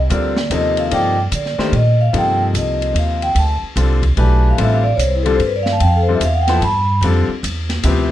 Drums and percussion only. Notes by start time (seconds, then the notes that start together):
0.10 hi-hat pedal, ride
0.37 snare
0.51 hi-hat pedal, ride
0.77 ride
0.91 ride
1.32 hi-hat pedal, ride
1.46 snare
1.59 snare
1.73 ride
2.14 ride
2.55 hi-hat pedal, ride
2.82 ride
2.96 ride
3.22 ride
3.36 ride
3.77 hi-hat pedal, ride
4.03 kick, ride
4.17 ride
4.58 ride
4.99 hi-hat pedal, ride
5.26 ride
5.40 ride
5.66 snare
5.80 ride
6.21 hi-hat pedal, ride
6.47 snare, ride
6.62 ride
7.02 ride
7.44 hi-hat pedal, ride
7.70 snare, ride
7.83 hi-hat pedal, ride